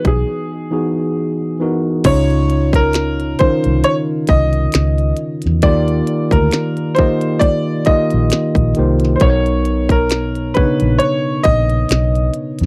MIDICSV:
0, 0, Header, 1, 6, 480
1, 0, Start_track
1, 0, Key_signature, -5, "major"
1, 0, Tempo, 895522
1, 1097, Time_signature, 4, 2, 24, 8
1, 6787, End_track
2, 0, Start_track
2, 0, Title_t, "Grand piano"
2, 0, Program_c, 0, 0
2, 40, Note_on_c, 0, 68, 62
2, 839, Note_off_c, 0, 68, 0
2, 1103, Note_on_c, 0, 73, 85
2, 1476, Note_on_c, 0, 70, 93
2, 1486, Note_off_c, 0, 73, 0
2, 1798, Note_off_c, 0, 70, 0
2, 1818, Note_on_c, 0, 72, 90
2, 2059, Note_on_c, 0, 73, 101
2, 2065, Note_off_c, 0, 72, 0
2, 2113, Note_off_c, 0, 73, 0
2, 2302, Note_on_c, 0, 75, 104
2, 2758, Note_off_c, 0, 75, 0
2, 3016, Note_on_c, 0, 74, 92
2, 3389, Note_on_c, 0, 70, 80
2, 3403, Note_off_c, 0, 74, 0
2, 3723, Note_on_c, 0, 72, 85
2, 3746, Note_off_c, 0, 70, 0
2, 3963, Note_on_c, 0, 74, 100
2, 3978, Note_off_c, 0, 72, 0
2, 4213, Note_on_c, 0, 75, 95
2, 4218, Note_off_c, 0, 74, 0
2, 4673, Note_off_c, 0, 75, 0
2, 4908, Note_on_c, 0, 72, 65
2, 4939, Note_off_c, 0, 72, 0
2, 4941, Note_on_c, 0, 73, 88
2, 5314, Note_on_c, 0, 70, 83
2, 5325, Note_off_c, 0, 73, 0
2, 5637, Note_off_c, 0, 70, 0
2, 5651, Note_on_c, 0, 71, 90
2, 5888, Note_on_c, 0, 73, 97
2, 5901, Note_off_c, 0, 71, 0
2, 6115, Note_off_c, 0, 73, 0
2, 6129, Note_on_c, 0, 75, 110
2, 6592, Note_off_c, 0, 75, 0
2, 6787, End_track
3, 0, Start_track
3, 0, Title_t, "Tine electric piano"
3, 0, Program_c, 1, 4
3, 0, Control_c, 1, 64, 127
3, 0, Note_on_c, 1, 52, 77
3, 0, Note_on_c, 1, 59, 68
3, 0, Note_on_c, 1, 63, 73
3, 0, Note_on_c, 1, 66, 73
3, 0, Note_on_c, 1, 68, 91
3, 381, Note_off_c, 1, 52, 0
3, 381, Note_on_c, 1, 52, 66
3, 383, Note_off_c, 1, 59, 0
3, 383, Note_on_c, 1, 59, 56
3, 385, Note_off_c, 1, 63, 0
3, 385, Note_on_c, 1, 63, 59
3, 389, Note_off_c, 1, 66, 0
3, 389, Note_on_c, 1, 66, 56
3, 392, Note_off_c, 1, 68, 0
3, 392, Note_on_c, 1, 68, 71
3, 770, Note_off_c, 1, 52, 0
3, 772, Note_off_c, 1, 59, 0
3, 773, Note_off_c, 1, 63, 0
3, 774, Note_off_c, 1, 66, 0
3, 776, Note_off_c, 1, 68, 0
3, 858, Note_on_c, 1, 52, 69
3, 863, Note_on_c, 1, 59, 60
3, 864, Note_on_c, 1, 63, 63
3, 868, Note_on_c, 1, 66, 62
3, 870, Note_on_c, 1, 70, 71
3, 1053, Note_off_c, 1, 52, 0
3, 1056, Note_off_c, 1, 59, 0
3, 1056, Note_off_c, 1, 63, 0
3, 1058, Note_off_c, 1, 66, 0
3, 1059, Note_off_c, 1, 70, 0
3, 1097, Note_on_c, 1, 49, 85
3, 1101, Note_on_c, 1, 61, 84
3, 1103, Control_c, 1, 64, 0
3, 1106, Note_on_c, 1, 63, 80
3, 1108, Note_on_c, 1, 65, 75
3, 1110, Note_on_c, 1, 73, 95
3, 1197, Control_c, 1, 64, 127
3, 1676, Note_off_c, 1, 49, 0
3, 1679, Note_off_c, 1, 61, 0
3, 1681, Note_off_c, 1, 63, 0
3, 1682, Note_off_c, 1, 65, 0
3, 1683, Note_off_c, 1, 73, 0
3, 1819, Note_on_c, 1, 51, 75
3, 1821, Note_on_c, 1, 61, 70
3, 1824, Note_on_c, 1, 63, 67
3, 1827, Note_on_c, 1, 65, 66
3, 1830, Note_on_c, 1, 70, 76
3, 2581, Note_off_c, 1, 51, 0
3, 2582, Note_off_c, 1, 61, 0
3, 2583, Note_off_c, 1, 63, 0
3, 2585, Note_off_c, 1, 65, 0
3, 2586, Note_off_c, 1, 70, 0
3, 3020, Note_on_c, 1, 51, 86
3, 3024, Note_on_c, 1, 58, 76
3, 3025, Control_c, 1, 64, 0
3, 3027, Note_on_c, 1, 65, 82
3, 3028, Note_on_c, 1, 67, 78
3, 3031, Note_on_c, 1, 74, 95
3, 3116, Control_c, 1, 64, 127
3, 3598, Note_off_c, 1, 51, 0
3, 3600, Note_off_c, 1, 58, 0
3, 3602, Note_off_c, 1, 65, 0
3, 3602, Note_off_c, 1, 67, 0
3, 3603, Note_off_c, 1, 74, 0
3, 3741, Note_on_c, 1, 51, 75
3, 3742, Note_on_c, 1, 58, 68
3, 3743, Note_on_c, 1, 65, 68
3, 3749, Note_on_c, 1, 67, 65
3, 3751, Note_on_c, 1, 75, 81
3, 4130, Note_off_c, 1, 51, 0
3, 4131, Note_off_c, 1, 58, 0
3, 4132, Note_off_c, 1, 65, 0
3, 4134, Note_off_c, 1, 67, 0
3, 4136, Note_off_c, 1, 75, 0
3, 4224, Note_on_c, 1, 51, 70
3, 4224, Note_on_c, 1, 58, 62
3, 4227, Note_on_c, 1, 65, 63
3, 4230, Note_on_c, 1, 67, 63
3, 4234, Note_on_c, 1, 75, 82
3, 4612, Note_off_c, 1, 51, 0
3, 4612, Note_off_c, 1, 58, 0
3, 4614, Note_off_c, 1, 65, 0
3, 4615, Note_off_c, 1, 67, 0
3, 4617, Note_off_c, 1, 75, 0
3, 4700, Note_on_c, 1, 51, 67
3, 4705, Note_on_c, 1, 58, 61
3, 4708, Note_on_c, 1, 65, 59
3, 4709, Note_on_c, 1, 67, 60
3, 4712, Note_on_c, 1, 72, 70
3, 4894, Note_off_c, 1, 51, 0
3, 4897, Note_off_c, 1, 58, 0
3, 4898, Note_off_c, 1, 65, 0
3, 4899, Note_off_c, 1, 67, 0
3, 4900, Note_off_c, 1, 72, 0
3, 4938, Note_on_c, 1, 47, 89
3, 4942, Note_on_c, 1, 59, 83
3, 4945, Control_c, 1, 64, 0
3, 4945, Note_on_c, 1, 63, 83
3, 4947, Note_on_c, 1, 70, 83
3, 4950, Note_on_c, 1, 72, 78
3, 4983, Note_off_c, 1, 72, 0
3, 4983, Note_on_c, 1, 73, 98
3, 5050, Control_c, 1, 64, 127
3, 5517, Note_off_c, 1, 47, 0
3, 5519, Note_off_c, 1, 59, 0
3, 5520, Note_off_c, 1, 63, 0
3, 5522, Note_off_c, 1, 70, 0
3, 5539, Note_off_c, 1, 73, 0
3, 5658, Note_on_c, 1, 49, 77
3, 5662, Note_on_c, 1, 59, 66
3, 5664, Note_on_c, 1, 62, 54
3, 5666, Note_on_c, 1, 71, 68
3, 5670, Note_on_c, 1, 73, 82
3, 5698, Note_on_c, 1, 63, 69
3, 5700, Note_off_c, 1, 62, 0
3, 6420, Note_off_c, 1, 49, 0
3, 6422, Note_off_c, 1, 59, 0
3, 6424, Note_off_c, 1, 71, 0
3, 6426, Note_off_c, 1, 73, 0
3, 6440, Note_off_c, 1, 63, 0
3, 6787, End_track
4, 0, Start_track
4, 0, Title_t, "Fingered electric bass"
4, 0, Program_c, 2, 33
4, 32, Note_on_c, 2, 35, 78
4, 120, Note_off_c, 2, 35, 0
4, 1101, Note_on_c, 2, 37, 86
4, 1797, Note_off_c, 2, 37, 0
4, 1962, Note_on_c, 2, 36, 82
4, 2046, Note_off_c, 2, 36, 0
4, 2303, Note_on_c, 2, 36, 89
4, 2501, Note_off_c, 2, 36, 0
4, 2547, Note_on_c, 2, 37, 81
4, 2743, Note_off_c, 2, 37, 0
4, 2925, Note_on_c, 2, 40, 74
4, 3021, Note_off_c, 2, 40, 0
4, 3021, Note_on_c, 2, 39, 108
4, 3220, Note_off_c, 2, 39, 0
4, 3389, Note_on_c, 2, 38, 78
4, 3478, Note_off_c, 2, 38, 0
4, 4363, Note_on_c, 2, 34, 87
4, 4446, Note_off_c, 2, 34, 0
4, 4589, Note_on_c, 2, 34, 87
4, 4678, Note_off_c, 2, 34, 0
4, 4708, Note_on_c, 2, 36, 95
4, 4904, Note_off_c, 2, 36, 0
4, 4940, Note_on_c, 2, 35, 97
4, 5637, Note_off_c, 2, 35, 0
4, 5800, Note_on_c, 2, 34, 84
4, 5885, Note_off_c, 2, 34, 0
4, 6142, Note_on_c, 2, 34, 91
4, 6341, Note_off_c, 2, 34, 0
4, 6383, Note_on_c, 2, 35, 93
4, 6581, Note_off_c, 2, 35, 0
4, 6760, Note_on_c, 2, 41, 91
4, 6787, Note_off_c, 2, 41, 0
4, 6787, End_track
5, 0, Start_track
5, 0, Title_t, "Muted fingered electric bass strokes"
5, 1829, Note_on_c, 9, 29, 43
5, 1882, Note_off_c, 9, 29, 0
5, 4221, Note_on_c, 9, 29, 47
5, 4275, Note_off_c, 9, 29, 0
5, 5669, Note_on_c, 9, 29, 43
5, 5722, Note_off_c, 9, 29, 0
5, 6787, End_track
6, 0, Start_track
6, 0, Title_t, "Drums"
6, 26, Note_on_c, 9, 36, 91
6, 26, Note_on_c, 9, 42, 50
6, 79, Note_off_c, 9, 42, 0
6, 80, Note_off_c, 9, 36, 0
6, 1095, Note_on_c, 9, 42, 82
6, 1096, Note_on_c, 9, 49, 99
6, 1098, Note_on_c, 9, 36, 120
6, 1149, Note_off_c, 9, 42, 0
6, 1150, Note_off_c, 9, 49, 0
6, 1151, Note_off_c, 9, 36, 0
6, 1234, Note_on_c, 9, 42, 35
6, 1287, Note_off_c, 9, 42, 0
6, 1338, Note_on_c, 9, 42, 65
6, 1392, Note_off_c, 9, 42, 0
6, 1464, Note_on_c, 9, 36, 94
6, 1470, Note_on_c, 9, 42, 50
6, 1517, Note_off_c, 9, 36, 0
6, 1524, Note_off_c, 9, 42, 0
6, 1572, Note_on_c, 9, 42, 75
6, 1578, Note_on_c, 9, 26, 84
6, 1583, Note_on_c, 9, 38, 104
6, 1626, Note_off_c, 9, 42, 0
6, 1632, Note_off_c, 9, 26, 0
6, 1637, Note_off_c, 9, 38, 0
6, 1713, Note_on_c, 9, 42, 36
6, 1767, Note_off_c, 9, 42, 0
6, 1816, Note_on_c, 9, 42, 58
6, 1825, Note_on_c, 9, 36, 82
6, 1870, Note_off_c, 9, 42, 0
6, 1879, Note_off_c, 9, 36, 0
6, 1951, Note_on_c, 9, 42, 53
6, 2004, Note_off_c, 9, 42, 0
6, 2057, Note_on_c, 9, 42, 94
6, 2110, Note_off_c, 9, 42, 0
6, 2291, Note_on_c, 9, 42, 65
6, 2298, Note_on_c, 9, 36, 97
6, 2344, Note_off_c, 9, 42, 0
6, 2351, Note_off_c, 9, 36, 0
6, 2427, Note_on_c, 9, 42, 40
6, 2481, Note_off_c, 9, 42, 0
6, 2531, Note_on_c, 9, 42, 89
6, 2540, Note_on_c, 9, 26, 99
6, 2545, Note_on_c, 9, 38, 117
6, 2585, Note_off_c, 9, 42, 0
6, 2594, Note_off_c, 9, 26, 0
6, 2598, Note_off_c, 9, 38, 0
6, 2671, Note_on_c, 9, 42, 33
6, 2725, Note_off_c, 9, 42, 0
6, 2769, Note_on_c, 9, 42, 69
6, 2823, Note_off_c, 9, 42, 0
6, 2904, Note_on_c, 9, 42, 52
6, 2930, Note_on_c, 9, 38, 36
6, 2957, Note_off_c, 9, 42, 0
6, 2983, Note_off_c, 9, 38, 0
6, 3013, Note_on_c, 9, 42, 85
6, 3017, Note_on_c, 9, 36, 112
6, 3067, Note_off_c, 9, 42, 0
6, 3071, Note_off_c, 9, 36, 0
6, 3151, Note_on_c, 9, 42, 35
6, 3205, Note_off_c, 9, 42, 0
6, 3255, Note_on_c, 9, 42, 67
6, 3308, Note_off_c, 9, 42, 0
6, 3383, Note_on_c, 9, 36, 92
6, 3390, Note_on_c, 9, 42, 51
6, 3437, Note_off_c, 9, 36, 0
6, 3443, Note_off_c, 9, 42, 0
6, 3492, Note_on_c, 9, 42, 74
6, 3497, Note_on_c, 9, 26, 85
6, 3502, Note_on_c, 9, 38, 110
6, 3545, Note_off_c, 9, 42, 0
6, 3551, Note_off_c, 9, 26, 0
6, 3556, Note_off_c, 9, 38, 0
6, 3628, Note_on_c, 9, 42, 34
6, 3682, Note_off_c, 9, 42, 0
6, 3732, Note_on_c, 9, 42, 58
6, 3744, Note_on_c, 9, 36, 84
6, 3786, Note_off_c, 9, 42, 0
6, 3798, Note_off_c, 9, 36, 0
6, 3866, Note_on_c, 9, 42, 54
6, 3920, Note_off_c, 9, 42, 0
6, 3971, Note_on_c, 9, 36, 95
6, 3975, Note_on_c, 9, 42, 90
6, 4025, Note_off_c, 9, 36, 0
6, 4028, Note_off_c, 9, 42, 0
6, 4207, Note_on_c, 9, 42, 66
6, 4217, Note_on_c, 9, 36, 94
6, 4261, Note_off_c, 9, 42, 0
6, 4270, Note_off_c, 9, 36, 0
6, 4344, Note_on_c, 9, 42, 39
6, 4398, Note_off_c, 9, 42, 0
6, 4449, Note_on_c, 9, 42, 92
6, 4458, Note_on_c, 9, 26, 93
6, 4463, Note_on_c, 9, 38, 119
6, 4503, Note_off_c, 9, 42, 0
6, 4512, Note_off_c, 9, 26, 0
6, 4516, Note_off_c, 9, 38, 0
6, 4583, Note_on_c, 9, 36, 86
6, 4590, Note_on_c, 9, 42, 34
6, 4637, Note_off_c, 9, 36, 0
6, 4644, Note_off_c, 9, 42, 0
6, 4689, Note_on_c, 9, 42, 69
6, 4743, Note_off_c, 9, 42, 0
6, 4822, Note_on_c, 9, 42, 50
6, 4848, Note_on_c, 9, 38, 33
6, 4876, Note_off_c, 9, 42, 0
6, 4902, Note_off_c, 9, 38, 0
6, 4931, Note_on_c, 9, 42, 84
6, 4936, Note_on_c, 9, 36, 112
6, 4984, Note_off_c, 9, 42, 0
6, 4990, Note_off_c, 9, 36, 0
6, 5071, Note_on_c, 9, 42, 33
6, 5124, Note_off_c, 9, 42, 0
6, 5174, Note_on_c, 9, 42, 64
6, 5227, Note_off_c, 9, 42, 0
6, 5302, Note_on_c, 9, 36, 89
6, 5308, Note_on_c, 9, 42, 51
6, 5356, Note_off_c, 9, 36, 0
6, 5361, Note_off_c, 9, 42, 0
6, 5411, Note_on_c, 9, 42, 80
6, 5417, Note_on_c, 9, 26, 83
6, 5422, Note_on_c, 9, 38, 103
6, 5465, Note_off_c, 9, 42, 0
6, 5471, Note_off_c, 9, 26, 0
6, 5476, Note_off_c, 9, 38, 0
6, 5550, Note_on_c, 9, 42, 35
6, 5603, Note_off_c, 9, 42, 0
6, 5653, Note_on_c, 9, 42, 58
6, 5664, Note_on_c, 9, 36, 88
6, 5707, Note_off_c, 9, 42, 0
6, 5717, Note_off_c, 9, 36, 0
6, 5788, Note_on_c, 9, 42, 56
6, 5841, Note_off_c, 9, 42, 0
6, 5895, Note_on_c, 9, 42, 90
6, 5948, Note_off_c, 9, 42, 0
6, 6132, Note_on_c, 9, 42, 68
6, 6137, Note_on_c, 9, 36, 94
6, 6185, Note_off_c, 9, 42, 0
6, 6191, Note_off_c, 9, 36, 0
6, 6269, Note_on_c, 9, 42, 39
6, 6322, Note_off_c, 9, 42, 0
6, 6374, Note_on_c, 9, 42, 91
6, 6383, Note_on_c, 9, 26, 95
6, 6388, Note_on_c, 9, 38, 113
6, 6428, Note_off_c, 9, 42, 0
6, 6437, Note_off_c, 9, 26, 0
6, 6441, Note_off_c, 9, 38, 0
6, 6515, Note_on_c, 9, 42, 34
6, 6568, Note_off_c, 9, 42, 0
6, 6612, Note_on_c, 9, 42, 67
6, 6666, Note_off_c, 9, 42, 0
6, 6746, Note_on_c, 9, 42, 55
6, 6787, Note_off_c, 9, 42, 0
6, 6787, End_track
0, 0, End_of_file